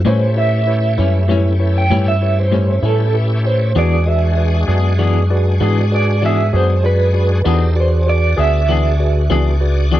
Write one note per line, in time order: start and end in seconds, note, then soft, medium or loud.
0.05 0.24 A2 medium
0.05 0.96 A2 medium
0.05 0.24 G3 medium
0.05 3.73 A3 medium
0.05 0.25 C#4 medium
0.05 3.73 C#4 medium
0.05 0.29 E4 medium
0.05 3.73 E4 medium
0.05 0.25 E4 medium
0.05 0.29 G4 medium
0.05 3.73 G4 medium
0.05 0.29 B4 medium
0.05 0.37 C5 medium
0.05 0.29 C#5 medium
0.36 0.60 E4 medium
0.36 0.60 G4 soft
0.36 0.60 B4 soft
0.36 0.60 C#5 medium
0.36 1.72 E5 loud
0.66 0.90 E4 medium
0.66 0.91 G4 soft
0.66 0.91 B4 soft
0.66 0.91 C#5 medium
0.98 1.89 F#2 medium
0.98 1.18 G3 soft
0.98 1.18 C#4 soft
0.98 1.21 E4 medium
0.98 1.17 E4 soft
0.98 1.22 G4 soft
0.98 1.22 B4 soft
0.98 1.22 C#5 medium
1.28 1.48 A2 medium
1.28 1.48 G3 medium
1.28 1.49 C#4 medium
1.28 1.53 E4 medium
1.28 1.49 E4 medium
1.28 1.52 G4 medium
1.28 1.52 B4 medium
1.28 1.53 C#5 medium
1.59 1.83 E4 medium
1.59 1.83 G4 medium
1.59 1.83 B4 soft
1.59 1.83 C#5 medium
1.78 2.07 G5 medium
1.90 2.81 G2 medium
1.90 2.10 A2 medium
1.90 2.10 G3 medium
1.90 2.10 C#4 medium
1.90 2.14 E4 medium
1.90 2.10 E4 medium
1.90 2.14 G4 medium
1.90 2.14 B4 soft
1.90 2.14 C#5 medium
2.08 2.38 E5 medium
2.22 2.45 E4 medium
2.22 2.45 G4 soft
2.22 2.45 B4 soft
2.22 2.45 C#5 medium
2.40 2.84 C5 medium
2.52 2.71 A2 medium
2.52 2.71 G3 medium
2.52 2.72 C#4 medium
2.52 2.76 E4 medium
2.52 2.72 E4 medium
2.52 2.76 G4 medium
2.52 2.76 B4 soft
2.52 2.76 C#5 medium
2.82 3.73 A2 medium
2.82 3.03 G3 soft
2.82 3.03 C#4 soft
2.82 3.07 E4 medium
2.82 3.02 E4 medium
2.82 3.06 G4 soft
2.82 3.15 A4 medium
2.82 3.07 B4 soft
2.82 3.07 C#5 medium
3.14 3.38 E4 soft
3.14 3.38 G4 medium
3.14 3.38 B4 soft
3.14 3.38 E5 medium
3.45 3.68 E4 medium
3.45 3.69 G4 soft
3.45 3.69 B4 soft
3.45 3.76 C5 medium
3.45 3.69 C#5 medium
3.75 4.66 E2 medium
3.75 3.95 E3 medium
3.75 7.42 G#3 medium
3.75 3.95 B3 medium
3.75 7.42 D4 medium
3.75 3.96 D4 medium
3.75 7.42 F#4 medium
3.75 3.99 F#4 medium
3.75 3.99 G#4 medium
3.75 7.42 G#4 medium
3.75 3.96 G#4 medium
3.75 4.00 B4 medium
3.75 3.99 D5 medium
3.75 4.08 D5 medium
4.06 4.30 F#4 medium
4.06 4.30 G#4 soft
4.06 4.30 B4 soft
4.06 4.30 D5 medium
4.06 5.89 E5 medium
4.37 4.61 F#4 medium
4.37 4.61 G#4 soft
4.37 4.61 B4 soft
4.37 4.61 D5 medium
4.68 5.58 F#2 medium
4.68 4.88 B3 soft
4.68 4.88 D4 soft
4.68 4.92 F#4 medium
4.68 4.87 G#4 soft
4.68 4.92 G#4 soft
4.68 4.92 B4 soft
4.68 4.92 D5 medium
4.99 5.18 E3 medium
4.99 5.18 B3 medium
4.99 5.19 D4 medium
4.99 5.22 F#4 medium
4.99 5.22 G#4 medium
4.99 5.20 G#4 medium
4.99 5.22 B4 medium
4.99 5.22 D5 medium
5.30 5.54 F#4 medium
5.30 5.54 G#4 medium
5.30 5.54 B4 medium
5.30 5.54 D5 medium
5.60 6.51 G#2 medium
5.60 5.80 E3 medium
5.60 5.80 B3 medium
5.60 5.80 D4 medium
5.60 5.84 F#4 medium
5.60 5.84 G#4 medium
5.60 5.81 G#4 medium
5.60 5.84 B4 medium
5.60 5.84 D5 medium
5.92 6.15 F#4 medium
5.92 6.15 G#4 medium
5.92 6.15 B4 soft
5.92 6.15 D5 medium
5.92 6.23 D5 loud
6.22 6.41 E3 medium
6.22 6.42 B3 medium
6.22 6.42 D4 medium
6.22 6.46 F#4 medium
6.22 6.46 G#4 soft
6.22 6.43 G#4 medium
6.22 6.46 B4 soft
6.22 6.46 D5 medium
6.22 6.54 E5 medium
6.53 7.43 F#2 medium
6.53 6.74 B3 soft
6.53 6.73 D4 soft
6.53 6.77 F#4 medium
6.53 6.76 G#4 medium
6.53 6.72 G#4 medium
6.53 6.77 B4 soft
6.53 6.85 C5 medium
6.53 6.77 D5 medium
6.84 7.07 F#4 medium
6.84 7.07 G#4 medium
6.84 7.08 B4 soft
6.84 7.45 B4 medium
6.84 7.07 D5 medium
7.14 7.38 F#4 medium
7.14 7.38 G#4 soft
7.14 7.38 B4 medium
7.14 7.38 D5 medium
7.45 8.35 E2 medium
7.45 7.64 E3 medium
7.45 7.64 B3 medium
7.45 7.65 D4 medium
7.45 7.77 D#4 medium
7.45 7.68 F#4 medium
7.45 7.77 G4 medium
7.45 7.68 G#4 medium
7.45 7.65 G#4 medium
7.45 7.77 A4 medium
7.45 7.69 B4 medium
7.45 7.77 C5 medium
7.45 7.68 D5 medium
7.76 10.00 D4 medium
7.76 7.99 F#4 medium
7.76 10.00 F#4 medium
7.76 10.00 G#4 medium
7.76 7.99 G#4 medium
7.76 7.99 B4 soft
7.76 10.00 D5 medium
7.76 8.00 D5 medium
7.80 8.09 C5 medium
8.07 8.30 F#4 medium
8.07 8.30 G#4 soft
8.07 8.30 B4 soft
8.07 8.30 D5 medium
8.07 8.38 D5 medium
8.37 9.27 D2 medium
8.37 8.58 B3 soft
8.37 8.57 D4 soft
8.37 8.61 F#4 medium
8.37 8.61 G#4 medium
8.37 8.56 G#4 soft
8.37 8.61 B4 medium
8.37 8.61 D5 medium
8.37 10.00 E5 loud
8.68 8.87 E3 medium
8.68 8.88 B3 medium
8.68 8.89 D4 medium
8.68 8.92 F#4 soft
8.68 8.92 G#4 soft
8.68 8.89 G#4 medium
8.68 8.92 B4 soft
8.68 8.92 D5 medium
9.00 9.23 F#4 medium
9.00 9.23 G#4 medium
9.00 9.23 B4 medium
9.00 9.23 D5 medium
9.30 10.00 C#2 medium
9.30 9.49 E3 medium
9.30 9.49 B3 medium
9.30 9.49 D4 medium
9.30 9.53 F#4 medium
9.30 9.53 G#4 medium
9.30 9.50 G#4 medium
9.30 9.53 B4 medium
9.30 9.53 D5 medium
9.61 9.84 F#4 medium
9.61 9.84 G#4 medium
9.61 9.84 B4 medium
9.61 9.84 D5 medium
9.91 10.00 E3 medium
9.91 10.00 B3 medium
9.91 10.00 D4 medium
9.91 10.00 F#4 medium
9.91 10.00 G#4 medium
9.91 10.00 B4 medium
9.91 10.00 D5 medium